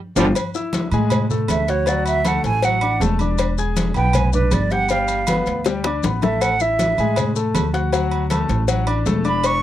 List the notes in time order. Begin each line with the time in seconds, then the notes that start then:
0.16 G1 D3 F3 G3 D4 F4 G4, cowbell, high conga, high timbale, maracas
0.35 cowbell, high conga, low agogo, maracas
0.54 E4 E5 E6, high conga, maracas
0.73 cowbell, high conga, low agogo, maracas
0.92 A2 G#3 G#4 G#5, high conga, low agogo, maracas
1.10 cowbell, high conga, low conga, low agogo, maracas
1.30 A3 A4 A5, high conga, low conga, maracas
1.48 D2 E5, cowbell, high conga, low timbale, low agogo, maracas
1.68 F#4 C#5 F#5 F#6, cowbell, high conga, maracas
1.86 F#3 F#4 D5 F#5, cowbell, high conga, low agogo, maracas
2.06 E5, high conga, low agogo, maracas
2.25 A3 A4 F#5 A5, cowbell, high conga, low agogo, maracas
2.44 A1 G#5, cowbell, maracas
2.62 F#3 F#4 F#5, cowbell, high conga, low agogo, maracas
2.81 D4 D5 D6, high conga, low agogo
3.00 E1 A3 A4 A5, cowbell, high conga, low timbale, maracas
3.19 D4 D5 D6, high conga, low agogo, maracas
3.38 cowbell, high conga, low agogo, maracas
3.58 G#4 G#5 G#6, high conga, maracas
3.76 cowbell, high conga, low agogo, maracas
3.94 B1 B3 B4 G5 B5, high conga, low agogo, maracas
4.13 G#5, cowbell, high conga, low conga, low agogo, maracas
4.33 D4 B4 D5 D6, high conga, low conga, maracas
4.51 G1 D5, cowbell, high conga, low timbale, low agogo, maracas
4.70 G4 F#5 G5 G6, cowbell, high conga, maracas
4.89 G3 G4 F5 G5, cowbell, high conga, low agogo, maracas
5.08 high conga, low agogo, maracas
5.27 B3 B4 B5, cowbell, high conga, low agogo, maracas
5.46 D2, cowbell, maracas
5.64 G3 G4 G5, cowbell, high bongo, high conga, low agogo, maracas
5.84 D4 D5 D6, high bongo, high conga, low agogo
6.03 A1 B3 B4 B5, cowbell, low bongo, high conga, maracas
6.22 A3 A4 E5 A5, low bongo, high conga, low agogo, maracas
6.41 F#5, cowbell, high conga, low agogo, maracas
6.60 E4 E5 E6, high conga, maracas
6.79 cowbell, high conga, low agogo, maracas
6.98 A2 G#3 G#4 G#5, high conga, low agogo, maracas
7.16 cowbell, high conga, low conga, low agogo, maracas
7.36 A3 A4 A5, high conga, maracas
7.54 D2, cowbell, high conga, low timbale, low agogo, maracas
7.74 F#4 F#5 F#6, cowbell, high conga, maracas
7.92 F#3 F#4 F#5, cowbell, high conga, low agogo, maracas
8.11 high conga, low agogo
8.30 A3 A4 A5, cowbell, high conga, low agogo, maracas
8.49 A1, cowbell, maracas
8.68 F#3 F#4 F#5, cowbell, high conga, low agogo, maracas
8.87 D4 D5 D6, high conga, low agogo
9.06 E1 A3 A4 A5, cowbell, high conga, low timbale, maracas
9.24 D4 D5 B5 D6, low agogo, maracas
9.44 C#6, cowbell, high conga, low agogo, maracas